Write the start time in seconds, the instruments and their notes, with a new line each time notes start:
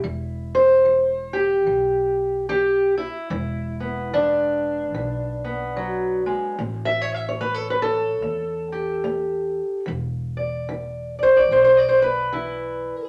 Already playing: steel-string acoustic guitar E4
0.04 upright bass E1, steel-string acoustic guitar E3
0.55 steel-string acoustic guitar C5
0.85 steel-string acoustic guitar E3
1.33 steel-string acoustic guitar G4
1.67 upright bass B1, steel-string acoustic guitar E3
2.49 steel-string acoustic guitar E3 G4
2.98 steel-string acoustic guitar E4
3.30 upright bass E1, steel-string acoustic guitar E3
3.80 steel-string acoustic guitar B3
4.13 steel-string acoustic guitar E3 D4
4.94 upright bass B1, steel-string acoustic guitar E3
5.45 steel-string acoustic guitar B3
5.76 steel-string acoustic guitar F#3
6.26 steel-string acoustic guitar G#3
6.59 upright bass A1, steel-string acoustic guitar A3
6.85 steel-string acoustic guitar E5
7.01 steel-string acoustic guitar C#5
7.14 steel-string acoustic guitar E5
7.29 steel-string acoustic guitar C#5
7.41 steel-string acoustic guitar A3 B4
7.54 steel-string acoustic guitar A4
7.70 steel-string acoustic guitar B4
7.82 steel-string acoustic guitar A4
8.22 upright bass E2, steel-string acoustic guitar A3
8.72 steel-string acoustic guitar G4
9.04 steel-string acoustic guitar A3
9.86 upright bass E1, steel-string acoustic guitar E3
10.37 steel-string acoustic guitar D5
10.69 steel-string acoustic guitar E3
11.19 steel-string acoustic guitar D5
11.23 steel-string acoustic guitar C5
11.37 steel-string acoustic guitar D5
11.51 upright bass B1, steel-string acoustic guitar E3 C5
11.64 steel-string acoustic guitar C5
11.77 steel-string acoustic guitar D5
11.89 steel-string acoustic guitar C5
12.02 steel-string acoustic guitar B4
12.32 steel-string acoustic guitar E3 E4